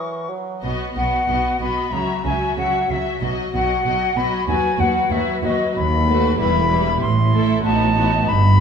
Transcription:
0.00 0.31 E3 soft
0.00 0.30 C#6 soft
0.29 0.63 F#3 soft
0.62 0.71 B1 soft
0.62 0.71 B2 soft
0.62 0.95 B3 soft
0.62 0.94 F#4 soft
0.62 0.93 D#5 soft
0.95 1.04 B1 soft
0.95 1.03 B2 soft
0.95 1.28 B3 soft
0.95 1.27 F#4 soft
0.95 1.26 D#5 soft
0.95 1.56 F#5 medium
1.27 1.36 B1 soft
1.27 1.36 B2 soft
1.27 1.60 B3 soft
1.27 1.59 F#4 soft
1.27 1.59 D#5 soft
1.60 1.68 B1 soft
1.60 1.69 B2 soft
1.60 1.92 B3 soft
1.60 1.91 F#4 soft
1.60 1.92 D#5 soft
1.60 1.93 B5 medium
1.92 2.00 C#2 soft
1.92 2.00 C#3 soft
1.92 2.24 F#3 soft
1.92 2.23 F#4 soft
1.92 2.23 E5 soft
1.92 2.24 A#5 medium
2.24 2.33 C#2 soft
2.24 2.33 C#3 soft
2.24 2.57 F#3 soft
2.24 2.56 F#4 soft
2.24 2.56 E5 soft
2.24 2.57 G#5 medium
2.57 2.65 C#2 soft
2.57 2.65 C#3 soft
2.57 2.89 F#3 soft
2.57 2.89 F#4 soft
2.57 2.89 E5 soft
2.57 2.92 F#5 medium
2.89 2.97 C#2 soft
2.89 2.98 C#3 soft
2.89 3.20 F#3 soft
2.89 3.21 F#4 soft
2.89 3.21 E5 soft
2.89 3.22 E5 soft
3.22 3.30 B1 soft
3.22 3.30 B2 soft
3.22 3.52 F#3 soft
3.22 3.53 F#4 soft
3.22 3.53 D#5 soft
3.54 3.62 B1 soft
3.54 3.62 B2 soft
3.54 3.84 F#3 soft
3.54 3.83 F#4 soft
3.54 3.85 D#5 soft
3.54 4.18 F#5 medium
3.84 3.93 B1 soft
3.84 3.93 B2 soft
3.84 4.15 F#3 soft
3.84 4.14 F#4 soft
3.84 4.16 D#5 soft
4.15 4.24 B1 soft
4.15 4.24 B2 soft
4.15 4.46 F#3 soft
4.15 4.46 F#4 soft
4.15 4.47 D#5 soft
4.15 4.47 B5 medium
4.47 4.56 D#2 soft
4.47 4.56 D#2 medium
4.47 4.78 F#3 soft
4.47 4.77 F#4 soft
4.47 4.78 B4 soft
4.47 4.81 G#5 medium
4.78 4.87 D#2 soft
4.78 5.10 F#3 soft
4.78 5.09 F#4 soft
4.78 5.10 B4 soft
4.78 5.13 F#5 medium
5.10 5.18 D#2 soft
5.10 5.19 D#2 soft
5.10 5.42 F#3 soft
5.10 5.42 F#4 soft
5.10 5.43 B4 soft
5.10 5.43 E5 medium
5.42 5.50 D#2 medium
5.42 5.51 D#2 soft
5.42 5.75 F#3 soft
5.42 5.75 F#4 soft
5.42 5.76 B4 soft
5.42 5.75 D#5 medium
5.75 6.32 D#2 medium
5.75 6.38 B5 medium
6.08 6.39 A3 soft
6.08 6.39 F#4 soft
6.08 6.38 B4 soft
6.38 6.94 E1 medium
6.38 6.94 E2 medium
6.38 6.69 G3 soft
6.38 6.69 E4 soft
6.38 6.69 B4 soft
6.38 7.00 B5 medium
6.70 7.01 G3 soft
6.70 7.01 E4 soft
6.70 7.01 B4 soft
7.01 7.57 A1 medium
7.01 7.57 A2 medium
7.01 7.63 C6 medium
7.32 7.64 A3 medium
7.32 7.64 E4 medium
7.32 7.64 A4 soft
7.63 8.20 A1 medium
7.63 8.19 A2 medium
7.63 7.94 B3 soft
7.63 7.94 D#4 soft
7.63 7.94 F#4 soft
7.63 8.29 A5 medium
7.95 8.27 B3 soft
7.95 8.27 D#4 soft
7.95 8.27 F#4 soft
8.27 8.60 G1 medium
8.27 8.60 G2 medium
8.27 8.60 B5 medium

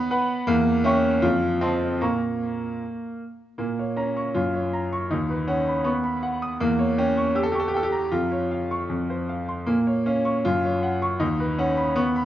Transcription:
0.00 0.47 B3 loud
0.10 0.44 B4 medium
0.10 0.44 F#5 medium
0.10 0.44 B5 medium
0.47 0.84 E2 medium
0.47 0.85 A#3 loud
0.84 1.23 C#4 medium
0.84 1.19 E5 medium
0.84 1.20 G5 medium
0.84 1.20 C#6 medium
1.22 1.61 F2 medium
1.22 1.62 F4 medium
1.61 2.01 C4 medium
1.61 1.97 D#5 soft
1.61 1.97 A5 soft
1.61 1.98 C6 soft
2.01 2.57 A#2 soft
2.01 3.20 A#3 medium
2.01 2.65 A#5 soft
2.01 2.65 C#6 soft
3.58 4.33 A#2 soft
3.58 3.97 A#3 medium
3.79 4.10 C#5 soft
3.96 4.35 C#4 medium
3.96 4.28 A#5 soft
4.17 4.36 C#6 soft
4.35 5.09 F#2 soft
4.35 5.11 F4 medium
4.54 4.85 C#5 soft
4.73 5.04 A#5 soft
4.93 5.12 C#6 soft
5.10 6.57 D#2 medium
5.10 5.49 D#4 medium
5.30 5.60 B4 soft
5.48 5.86 C#4 medium
5.48 5.79 F#5 soft
5.67 5.98 B5 soft
5.84 6.60 B3 medium
5.84 6.05 C#6 soft
6.04 6.34 B5 soft
6.23 6.53 F#5 soft
6.42 6.61 D#6 soft
6.60 8.09 E2 medium
6.60 6.98 A#3 medium
6.79 7.09 C#5 medium
6.98 7.36 C#4 medium
6.98 7.29 G5 soft
7.17 7.48 C#6 medium
7.35 7.44 G4 medium
7.35 7.55 E6 soft
7.43 7.52 A4 medium
7.52 7.60 G4 medium
7.52 7.86 C#6 soft
7.60 7.68 A4 medium
7.68 7.77 G4 medium
7.74 7.85 A4 medium
7.74 8.05 G5 soft
7.83 8.12 G4 medium
7.92 8.12 A#5 soft
8.12 8.88 F2 medium
8.12 9.29 F4 medium
8.32 8.63 C#5 soft
8.51 8.83 F5 soft
8.71 8.91 C#6 soft
8.90 9.65 F2 soft
9.10 9.41 C5 soft
9.29 9.60 F5 soft
9.49 9.68 C6 soft
9.66 10.43 A#2 medium
9.66 10.06 A#3 medium
9.87 10.18 C#5 soft
10.06 10.45 C#4 medium
10.06 10.38 F5 soft
10.25 10.45 C#6 soft
10.45 11.19 F#2 medium
10.45 11.21 F4 medium
10.65 10.95 C#5 soft
10.83 11.13 F#5 soft
11.02 11.21 C#6 medium
11.20 12.25 D#2 medium
11.20 11.58 D#4 medium
11.40 11.70 B4 soft
11.59 11.96 C#4 medium
11.59 11.89 F#5 soft
11.77 12.07 B5 medium
11.96 12.25 B3 medium
11.96 12.15 C#6 soft
12.16 12.25 B5 medium

